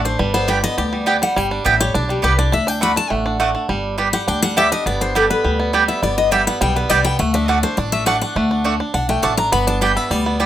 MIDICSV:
0, 0, Header, 1, 5, 480
1, 0, Start_track
1, 0, Key_signature, 1, "major"
1, 0, Tempo, 291545
1, 321, Time_signature, 4, 2, 24, 8
1, 17220, End_track
2, 0, Start_track
2, 0, Title_t, "Steel-string acoustic guitar"
2, 0, Program_c, 0, 25
2, 87, Note_on_c, 0, 72, 91
2, 321, Note_off_c, 0, 72, 0
2, 321, Note_on_c, 0, 71, 86
2, 555, Note_off_c, 0, 71, 0
2, 561, Note_on_c, 0, 72, 95
2, 791, Note_off_c, 0, 72, 0
2, 796, Note_on_c, 0, 74, 89
2, 1037, Note_off_c, 0, 74, 0
2, 1048, Note_on_c, 0, 75, 115
2, 1274, Note_off_c, 0, 75, 0
2, 1287, Note_on_c, 0, 74, 80
2, 1960, Note_off_c, 0, 74, 0
2, 2020, Note_on_c, 0, 78, 101
2, 2262, Note_off_c, 0, 78, 0
2, 2262, Note_on_c, 0, 79, 104
2, 2404, Note_off_c, 0, 79, 0
2, 2733, Note_on_c, 0, 76, 95
2, 2966, Note_off_c, 0, 76, 0
2, 2972, Note_on_c, 0, 73, 107
2, 3196, Note_off_c, 0, 73, 0
2, 3213, Note_on_c, 0, 74, 82
2, 3446, Note_off_c, 0, 74, 0
2, 3461, Note_on_c, 0, 67, 55
2, 3681, Note_off_c, 0, 67, 0
2, 3687, Note_on_c, 0, 71, 85
2, 3923, Note_off_c, 0, 71, 0
2, 3929, Note_on_c, 0, 74, 90
2, 4155, Note_off_c, 0, 74, 0
2, 4171, Note_on_c, 0, 76, 87
2, 4412, Note_off_c, 0, 76, 0
2, 4412, Note_on_c, 0, 79, 104
2, 4637, Note_off_c, 0, 79, 0
2, 4657, Note_on_c, 0, 83, 112
2, 4886, Note_off_c, 0, 83, 0
2, 4893, Note_on_c, 0, 81, 100
2, 5122, Note_off_c, 0, 81, 0
2, 5122, Note_on_c, 0, 78, 85
2, 6082, Note_off_c, 0, 78, 0
2, 6800, Note_on_c, 0, 78, 107
2, 7031, Note_off_c, 0, 78, 0
2, 7050, Note_on_c, 0, 79, 92
2, 7278, Note_off_c, 0, 79, 0
2, 7285, Note_on_c, 0, 78, 114
2, 7513, Note_off_c, 0, 78, 0
2, 7534, Note_on_c, 0, 76, 96
2, 7766, Note_off_c, 0, 76, 0
2, 7773, Note_on_c, 0, 75, 109
2, 7997, Note_off_c, 0, 75, 0
2, 8014, Note_on_c, 0, 74, 83
2, 8247, Note_off_c, 0, 74, 0
2, 8254, Note_on_c, 0, 72, 91
2, 8478, Note_off_c, 0, 72, 0
2, 8498, Note_on_c, 0, 69, 84
2, 8728, Note_off_c, 0, 69, 0
2, 8735, Note_on_c, 0, 71, 89
2, 9395, Note_off_c, 0, 71, 0
2, 9688, Note_on_c, 0, 76, 89
2, 9914, Note_off_c, 0, 76, 0
2, 9933, Note_on_c, 0, 74, 88
2, 10165, Note_off_c, 0, 74, 0
2, 10171, Note_on_c, 0, 75, 93
2, 10396, Note_off_c, 0, 75, 0
2, 10404, Note_on_c, 0, 76, 89
2, 10642, Note_off_c, 0, 76, 0
2, 10655, Note_on_c, 0, 78, 102
2, 10878, Note_off_c, 0, 78, 0
2, 10891, Note_on_c, 0, 79, 97
2, 11125, Note_off_c, 0, 79, 0
2, 11137, Note_on_c, 0, 71, 62
2, 11352, Note_off_c, 0, 71, 0
2, 11352, Note_on_c, 0, 74, 103
2, 11596, Note_off_c, 0, 74, 0
2, 11599, Note_on_c, 0, 79, 101
2, 11830, Note_off_c, 0, 79, 0
2, 11838, Note_on_c, 0, 78, 95
2, 12076, Note_off_c, 0, 78, 0
2, 12082, Note_on_c, 0, 76, 90
2, 12313, Note_off_c, 0, 76, 0
2, 12313, Note_on_c, 0, 74, 91
2, 12555, Note_off_c, 0, 74, 0
2, 12563, Note_on_c, 0, 72, 104
2, 12791, Note_off_c, 0, 72, 0
2, 12794, Note_on_c, 0, 74, 68
2, 13036, Note_off_c, 0, 74, 0
2, 13043, Note_on_c, 0, 76, 97
2, 13268, Note_off_c, 0, 76, 0
2, 13274, Note_on_c, 0, 78, 104
2, 13504, Note_off_c, 0, 78, 0
2, 13524, Note_on_c, 0, 78, 86
2, 14188, Note_off_c, 0, 78, 0
2, 14721, Note_on_c, 0, 78, 82
2, 14958, Note_off_c, 0, 78, 0
2, 14964, Note_on_c, 0, 79, 96
2, 15188, Note_off_c, 0, 79, 0
2, 15195, Note_on_c, 0, 81, 97
2, 15427, Note_off_c, 0, 81, 0
2, 15434, Note_on_c, 0, 82, 94
2, 15666, Note_off_c, 0, 82, 0
2, 15683, Note_on_c, 0, 83, 102
2, 15920, Note_off_c, 0, 83, 0
2, 15928, Note_on_c, 0, 81, 95
2, 16153, Note_off_c, 0, 81, 0
2, 16166, Note_on_c, 0, 79, 82
2, 16409, Note_off_c, 0, 79, 0
2, 16409, Note_on_c, 0, 76, 104
2, 16644, Note_off_c, 0, 76, 0
2, 16644, Note_on_c, 0, 74, 89
2, 17220, Note_off_c, 0, 74, 0
2, 17220, End_track
3, 0, Start_track
3, 0, Title_t, "Mandolin"
3, 0, Program_c, 1, 25
3, 786, Note_on_c, 1, 59, 95
3, 795, Note_on_c, 1, 67, 96
3, 799, Note_on_c, 1, 74, 92
3, 801, Note_on_c, 1, 79, 94
3, 945, Note_off_c, 1, 59, 0
3, 949, Note_off_c, 1, 67, 0
3, 951, Note_off_c, 1, 74, 0
3, 953, Note_off_c, 1, 79, 0
3, 1747, Note_on_c, 1, 59, 107
3, 1756, Note_on_c, 1, 74, 103
3, 1757, Note_on_c, 1, 67, 96
3, 1760, Note_on_c, 1, 79, 107
3, 1906, Note_off_c, 1, 59, 0
3, 1910, Note_off_c, 1, 67, 0
3, 1910, Note_off_c, 1, 74, 0
3, 1912, Note_off_c, 1, 79, 0
3, 2710, Note_on_c, 1, 59, 97
3, 2715, Note_on_c, 1, 67, 85
3, 2722, Note_on_c, 1, 74, 89
3, 2726, Note_on_c, 1, 79, 99
3, 2867, Note_off_c, 1, 59, 0
3, 2870, Note_off_c, 1, 67, 0
3, 2873, Note_off_c, 1, 74, 0
3, 2875, Note_off_c, 1, 79, 0
3, 3658, Note_on_c, 1, 59, 91
3, 3666, Note_on_c, 1, 67, 87
3, 3669, Note_on_c, 1, 74, 89
3, 3676, Note_on_c, 1, 79, 97
3, 3821, Note_off_c, 1, 59, 0
3, 3825, Note_off_c, 1, 67, 0
3, 3827, Note_off_c, 1, 74, 0
3, 3830, Note_off_c, 1, 79, 0
3, 4626, Note_on_c, 1, 57, 79
3, 4636, Note_on_c, 1, 66, 89
3, 4640, Note_on_c, 1, 74, 90
3, 4644, Note_on_c, 1, 78, 105
3, 4785, Note_off_c, 1, 57, 0
3, 4791, Note_off_c, 1, 66, 0
3, 4792, Note_off_c, 1, 74, 0
3, 4794, Note_off_c, 1, 78, 0
3, 5592, Note_on_c, 1, 57, 101
3, 5595, Note_on_c, 1, 66, 96
3, 5600, Note_on_c, 1, 74, 104
3, 5603, Note_on_c, 1, 78, 91
3, 5749, Note_off_c, 1, 57, 0
3, 5750, Note_off_c, 1, 66, 0
3, 5753, Note_off_c, 1, 74, 0
3, 5754, Note_off_c, 1, 78, 0
3, 6547, Note_on_c, 1, 59, 90
3, 6555, Note_on_c, 1, 67, 92
3, 6557, Note_on_c, 1, 74, 96
3, 6560, Note_on_c, 1, 79, 87
3, 6706, Note_off_c, 1, 59, 0
3, 6710, Note_off_c, 1, 67, 0
3, 6711, Note_off_c, 1, 74, 0
3, 6713, Note_off_c, 1, 79, 0
3, 7517, Note_on_c, 1, 59, 89
3, 7522, Note_on_c, 1, 67, 93
3, 7525, Note_on_c, 1, 74, 108
3, 7531, Note_on_c, 1, 79, 96
3, 7671, Note_off_c, 1, 59, 0
3, 7673, Note_off_c, 1, 67, 0
3, 7675, Note_off_c, 1, 74, 0
3, 7678, Note_off_c, 1, 79, 0
3, 8483, Note_on_c, 1, 59, 93
3, 8488, Note_on_c, 1, 67, 88
3, 8490, Note_on_c, 1, 74, 90
3, 8494, Note_on_c, 1, 79, 90
3, 8634, Note_off_c, 1, 59, 0
3, 8636, Note_off_c, 1, 67, 0
3, 8637, Note_off_c, 1, 74, 0
3, 8639, Note_off_c, 1, 79, 0
3, 9438, Note_on_c, 1, 59, 90
3, 9444, Note_on_c, 1, 67, 91
3, 9448, Note_on_c, 1, 74, 92
3, 9453, Note_on_c, 1, 79, 98
3, 9591, Note_off_c, 1, 59, 0
3, 9595, Note_off_c, 1, 67, 0
3, 9596, Note_off_c, 1, 74, 0
3, 9599, Note_off_c, 1, 79, 0
3, 10393, Note_on_c, 1, 59, 89
3, 10399, Note_on_c, 1, 67, 96
3, 10404, Note_on_c, 1, 74, 90
3, 10409, Note_on_c, 1, 79, 96
3, 10549, Note_off_c, 1, 59, 0
3, 10552, Note_off_c, 1, 67, 0
3, 10554, Note_off_c, 1, 74, 0
3, 10557, Note_off_c, 1, 79, 0
3, 11349, Note_on_c, 1, 59, 95
3, 11358, Note_on_c, 1, 67, 95
3, 11360, Note_on_c, 1, 74, 95
3, 11367, Note_on_c, 1, 79, 96
3, 11507, Note_off_c, 1, 59, 0
3, 11511, Note_off_c, 1, 67, 0
3, 11512, Note_off_c, 1, 74, 0
3, 11516, Note_off_c, 1, 79, 0
3, 12317, Note_on_c, 1, 57, 80
3, 12319, Note_on_c, 1, 66, 99
3, 12329, Note_on_c, 1, 74, 99
3, 12332, Note_on_c, 1, 78, 99
3, 12470, Note_off_c, 1, 57, 0
3, 12471, Note_off_c, 1, 66, 0
3, 12476, Note_off_c, 1, 74, 0
3, 12478, Note_off_c, 1, 78, 0
3, 13270, Note_on_c, 1, 57, 101
3, 13279, Note_on_c, 1, 66, 92
3, 13283, Note_on_c, 1, 74, 107
3, 13287, Note_on_c, 1, 78, 108
3, 13427, Note_off_c, 1, 57, 0
3, 13431, Note_off_c, 1, 66, 0
3, 13433, Note_off_c, 1, 74, 0
3, 13435, Note_off_c, 1, 78, 0
3, 14231, Note_on_c, 1, 57, 87
3, 14233, Note_on_c, 1, 66, 94
3, 14238, Note_on_c, 1, 74, 101
3, 14243, Note_on_c, 1, 78, 92
3, 14387, Note_off_c, 1, 57, 0
3, 14387, Note_off_c, 1, 66, 0
3, 14390, Note_off_c, 1, 74, 0
3, 14393, Note_off_c, 1, 78, 0
3, 15186, Note_on_c, 1, 57, 93
3, 15194, Note_on_c, 1, 66, 101
3, 15197, Note_on_c, 1, 74, 103
3, 15204, Note_on_c, 1, 78, 111
3, 15344, Note_off_c, 1, 57, 0
3, 15348, Note_off_c, 1, 66, 0
3, 15349, Note_off_c, 1, 74, 0
3, 15352, Note_off_c, 1, 78, 0
3, 16155, Note_on_c, 1, 59, 105
3, 16161, Note_on_c, 1, 67, 92
3, 16165, Note_on_c, 1, 74, 83
3, 16169, Note_on_c, 1, 79, 112
3, 16307, Note_off_c, 1, 59, 0
3, 16311, Note_off_c, 1, 67, 0
3, 16313, Note_off_c, 1, 74, 0
3, 16315, Note_off_c, 1, 79, 0
3, 17116, Note_on_c, 1, 59, 99
3, 17119, Note_on_c, 1, 67, 100
3, 17123, Note_on_c, 1, 74, 104
3, 17128, Note_on_c, 1, 79, 106
3, 17220, Note_off_c, 1, 59, 0
3, 17220, Note_off_c, 1, 67, 0
3, 17220, Note_off_c, 1, 74, 0
3, 17220, Note_off_c, 1, 79, 0
3, 17220, End_track
4, 0, Start_track
4, 0, Title_t, "Five-string banjo"
4, 0, Program_c, 2, 105
4, 0, Note_on_c, 2, 57, 60
4, 0, Note_on_c, 2, 62, 64
4, 81, Note_off_c, 2, 62, 0
4, 81, Note_on_c, 2, 62, 60
4, 269, Note_off_c, 2, 57, 0
4, 317, Note_on_c, 2, 55, 81
4, 558, Note_on_c, 2, 59, 60
4, 794, Note_on_c, 2, 50, 59
4, 996, Note_off_c, 2, 55, 0
4, 1025, Note_off_c, 2, 59, 0
4, 1045, Note_on_c, 2, 59, 57
4, 1280, Note_on_c, 2, 67, 73
4, 1475, Note_off_c, 2, 50, 0
4, 1525, Note_on_c, 2, 55, 60
4, 1713, Note_off_c, 2, 59, 0
4, 1737, Note_off_c, 2, 67, 0
4, 1756, Note_on_c, 2, 67, 63
4, 1987, Note_off_c, 2, 55, 0
4, 2006, Note_on_c, 2, 55, 66
4, 2226, Note_off_c, 2, 55, 0
4, 2239, Note_off_c, 2, 67, 0
4, 2246, Note_on_c, 2, 55, 84
4, 2385, Note_off_c, 2, 62, 0
4, 2490, Note_on_c, 2, 62, 54
4, 2709, Note_off_c, 2, 55, 0
4, 2728, Note_on_c, 2, 55, 47
4, 2970, Note_on_c, 2, 67, 61
4, 3194, Note_off_c, 2, 62, 0
4, 3201, Note_on_c, 2, 62, 70
4, 3402, Note_off_c, 2, 55, 0
4, 3444, Note_on_c, 2, 55, 58
4, 3636, Note_off_c, 2, 67, 0
4, 3682, Note_on_c, 2, 67, 60
4, 3920, Note_off_c, 2, 62, 0
4, 3927, Note_on_c, 2, 62, 60
4, 4113, Note_off_c, 2, 55, 0
4, 4154, Note_off_c, 2, 62, 0
4, 4154, Note_on_c, 2, 62, 68
4, 4162, Note_off_c, 2, 67, 0
4, 4395, Note_off_c, 2, 62, 0
4, 4395, Note_on_c, 2, 62, 53
4, 4628, Note_on_c, 2, 57, 51
4, 4876, Note_off_c, 2, 62, 0
4, 4876, Note_on_c, 2, 62, 59
4, 5089, Note_off_c, 2, 57, 0
4, 5109, Note_on_c, 2, 57, 67
4, 5355, Note_off_c, 2, 62, 0
4, 5362, Note_on_c, 2, 62, 62
4, 5572, Note_off_c, 2, 57, 0
4, 5592, Note_on_c, 2, 57, 70
4, 5832, Note_off_c, 2, 62, 0
4, 5838, Note_on_c, 2, 62, 54
4, 6070, Note_off_c, 2, 57, 0
4, 6077, Note_on_c, 2, 55, 78
4, 6549, Note_off_c, 2, 55, 0
4, 6556, Note_on_c, 2, 55, 55
4, 6808, Note_on_c, 2, 67, 55
4, 7040, Note_off_c, 2, 62, 0
4, 7040, Note_on_c, 2, 62, 66
4, 7286, Note_off_c, 2, 55, 0
4, 7293, Note_on_c, 2, 55, 57
4, 7518, Note_off_c, 2, 67, 0
4, 7525, Note_on_c, 2, 67, 62
4, 7759, Note_off_c, 2, 62, 0
4, 7765, Note_on_c, 2, 62, 55
4, 8003, Note_on_c, 2, 59, 70
4, 8242, Note_off_c, 2, 62, 0
4, 8249, Note_on_c, 2, 62, 58
4, 8478, Note_off_c, 2, 55, 0
4, 8484, Note_on_c, 2, 55, 55
4, 8680, Note_off_c, 2, 59, 0
4, 8730, Note_on_c, 2, 59, 62
4, 8944, Note_off_c, 2, 55, 0
4, 8964, Note_on_c, 2, 55, 72
4, 9193, Note_off_c, 2, 59, 0
4, 9212, Note_on_c, 2, 59, 56
4, 9422, Note_off_c, 2, 55, 0
4, 9442, Note_on_c, 2, 55, 73
4, 9665, Note_off_c, 2, 59, 0
4, 9685, Note_on_c, 2, 59, 56
4, 9830, Note_off_c, 2, 67, 0
4, 9900, Note_off_c, 2, 59, 0
4, 9920, Note_on_c, 2, 59, 66
4, 10119, Note_off_c, 2, 55, 0
4, 10163, Note_off_c, 2, 62, 0
4, 10169, Note_on_c, 2, 62, 52
4, 10404, Note_on_c, 2, 55, 61
4, 10598, Note_off_c, 2, 59, 0
4, 10652, Note_on_c, 2, 59, 55
4, 10862, Note_off_c, 2, 55, 0
4, 10882, Note_on_c, 2, 55, 66
4, 11112, Note_off_c, 2, 59, 0
4, 11131, Note_on_c, 2, 59, 64
4, 11343, Note_off_c, 2, 55, 0
4, 11362, Note_on_c, 2, 55, 71
4, 11595, Note_off_c, 2, 59, 0
4, 11615, Note_on_c, 2, 59, 62
4, 11840, Note_off_c, 2, 55, 0
4, 11845, Note_off_c, 2, 59, 0
4, 11847, Note_on_c, 2, 57, 80
4, 12091, Note_off_c, 2, 62, 0
4, 12097, Note_on_c, 2, 62, 54
4, 12313, Note_off_c, 2, 57, 0
4, 12332, Note_on_c, 2, 57, 56
4, 12562, Note_off_c, 2, 62, 0
4, 12569, Note_on_c, 2, 62, 58
4, 12801, Note_off_c, 2, 62, 0
4, 12808, Note_on_c, 2, 62, 75
4, 13003, Note_off_c, 2, 57, 0
4, 13048, Note_on_c, 2, 57, 61
4, 13279, Note_off_c, 2, 62, 0
4, 13285, Note_on_c, 2, 62, 62
4, 13528, Note_off_c, 2, 62, 0
4, 13534, Note_on_c, 2, 62, 61
4, 13714, Note_off_c, 2, 57, 0
4, 13767, Note_on_c, 2, 57, 79
4, 14004, Note_off_c, 2, 62, 0
4, 14010, Note_on_c, 2, 62, 62
4, 14242, Note_off_c, 2, 62, 0
4, 14242, Note_on_c, 2, 62, 58
4, 14440, Note_off_c, 2, 57, 0
4, 14489, Note_off_c, 2, 62, 0
4, 14489, Note_on_c, 2, 62, 60
4, 14718, Note_off_c, 2, 62, 0
4, 14718, Note_on_c, 2, 62, 68
4, 14974, Note_on_c, 2, 57, 61
4, 15206, Note_off_c, 2, 62, 0
4, 15206, Note_on_c, 2, 62, 59
4, 15442, Note_off_c, 2, 62, 0
4, 15449, Note_on_c, 2, 62, 61
4, 15636, Note_off_c, 2, 57, 0
4, 15678, Note_on_c, 2, 59, 74
4, 15916, Note_off_c, 2, 62, 0
4, 15923, Note_on_c, 2, 62, 60
4, 16160, Note_on_c, 2, 55, 56
4, 16355, Note_off_c, 2, 59, 0
4, 16405, Note_on_c, 2, 59, 56
4, 16590, Note_off_c, 2, 62, 0
4, 16623, Note_off_c, 2, 55, 0
4, 16643, Note_on_c, 2, 55, 70
4, 16876, Note_off_c, 2, 59, 0
4, 16896, Note_on_c, 2, 59, 63
4, 17104, Note_off_c, 2, 55, 0
4, 17124, Note_on_c, 2, 55, 74
4, 17220, Note_off_c, 2, 55, 0
4, 17220, Note_off_c, 2, 59, 0
4, 17220, End_track
5, 0, Start_track
5, 0, Title_t, "Upright bass"
5, 0, Program_c, 3, 32
5, 0, Note_on_c, 3, 33, 84
5, 243, Note_off_c, 3, 33, 0
5, 322, Note_on_c, 3, 31, 99
5, 1040, Note_off_c, 3, 31, 0
5, 1279, Note_on_c, 3, 38, 83
5, 1999, Note_off_c, 3, 38, 0
5, 2248, Note_on_c, 3, 31, 87
5, 2605, Note_off_c, 3, 31, 0
5, 2727, Note_on_c, 3, 33, 92
5, 3133, Note_off_c, 3, 33, 0
5, 3205, Note_on_c, 3, 35, 84
5, 3611, Note_off_c, 3, 35, 0
5, 3680, Note_on_c, 3, 36, 88
5, 4089, Note_off_c, 3, 36, 0
5, 4158, Note_on_c, 3, 38, 92
5, 4879, Note_off_c, 3, 38, 0
5, 5118, Note_on_c, 3, 33, 86
5, 5839, Note_off_c, 3, 33, 0
5, 6074, Note_on_c, 3, 31, 91
5, 6796, Note_off_c, 3, 31, 0
5, 7041, Note_on_c, 3, 38, 82
5, 7760, Note_off_c, 3, 38, 0
5, 8002, Note_on_c, 3, 31, 92
5, 8721, Note_off_c, 3, 31, 0
5, 8965, Note_on_c, 3, 38, 81
5, 9683, Note_off_c, 3, 38, 0
5, 9922, Note_on_c, 3, 31, 91
5, 10640, Note_off_c, 3, 31, 0
5, 10883, Note_on_c, 3, 35, 91
5, 11290, Note_off_c, 3, 35, 0
5, 11369, Note_on_c, 3, 36, 82
5, 11773, Note_off_c, 3, 36, 0
5, 11844, Note_on_c, 3, 38, 99
5, 12562, Note_off_c, 3, 38, 0
5, 12811, Note_on_c, 3, 33, 93
5, 13526, Note_off_c, 3, 33, 0
5, 13760, Note_on_c, 3, 38, 98
5, 14478, Note_off_c, 3, 38, 0
5, 14719, Note_on_c, 3, 35, 82
5, 15127, Note_off_c, 3, 35, 0
5, 15199, Note_on_c, 3, 33, 87
5, 15606, Note_off_c, 3, 33, 0
5, 15678, Note_on_c, 3, 31, 101
5, 16396, Note_off_c, 3, 31, 0
5, 16637, Note_on_c, 3, 38, 89
5, 17220, Note_off_c, 3, 38, 0
5, 17220, End_track
0, 0, End_of_file